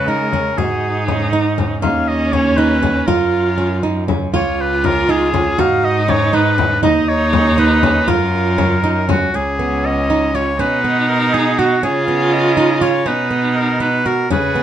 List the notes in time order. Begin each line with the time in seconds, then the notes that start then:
Already playing: C#3 G#3 B4
0.08 D#4 A#4, frame drum
0.32 C#4, frame drum
0.58 G#2 D#4 F#4 G#4, frame drum
1.08 C#4, frame drum
1.33 D#4, frame drum
1.58 C#4, frame drum
1.82 D#2 C#4 D#4 F5, frame drum
2.08 D#5
2.33 C#4 C#5, frame drum
2.57 D#4 B4, frame drum
2.83 C#4, frame drum
3.07 F#2 F4 A#4, frame drum
3.58 C#4
3.83 D#4
4.08 C#4, frame drum
4.33 C#2 F4 C#5, frame drum
4.61 B4
4.84 C#4 A#4, frame drum
5.09 D#4 G#4
5.34 C#4, frame drum
5.58 G#2 D#4 F#4 F5, frame drum
5.85 D#5
6.08 C#4 C#5, frame drum
6.33 D#4 B4
6.58 C#4, frame drum
6.83 D#2 D#4 D#5, frame drum
7.09 C#5
7.33 C#4, frame drum
7.58 D#4 B4, frame drum
7.83 C#4, frame drum
8.08 F#2 F4 A#4, frame drum
8.58 C#4, frame drum
8.84 D#4
9.09 C#4 F#4, frame drum
9.34 C#2 C#4 G#4
9.59 B3
9.86 D#5
10.10 D#4
10.35 F4 C#5
10.59 B2 C#4 D#4 B4
10.84 B3
11.09 A#4
11.34 D#4 G#4
11.59 F#4
11.83 C#3 C#4 F4 G#4
12.08 B3
12.33 D#5
12.57 D#4
12.81 F4 C#5
13.06 B2 C#4 D#4 B4
13.31 B3
13.56 A#4
13.80 D#4 B4
14.06 F#4 A#4
14.30 C#3 C#4 G#4 B4, frame drum
14.55 B3